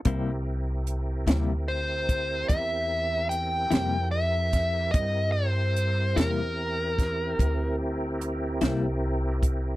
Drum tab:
HH |x-xx-xx-xx-x|x-xx-xx-xx-x|
SD |---o-----o-o|---o-o---o--|
BD |o----oo----o|o----oo----o|